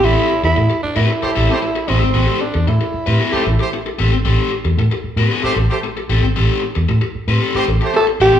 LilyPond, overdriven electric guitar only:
\new Staff \with { instrumentName = "Overdriven electric guitar" } { \time 4/4 \key a \minor \tempo 4 = 114 <c' g' a'>8 r4 r16 <c' g' b'>8 r16 <c' g' a'>16 r8. <c' g' a'>8 | <c' g' a'>8 r4 r16 <c' g' b'>16 <c' g' a'>8 r4 <c' g' a'>16 r16 | <c' g' a'>8 r4 r16 <c' g' b'>16 <c' g' a'>8 r4 <c' g' a'>16 r16 | <c' g' a'>8 r4 r16 <c' g' b'>16 <c' g' a'>8 r4 <c' g' a'>16 r16 | }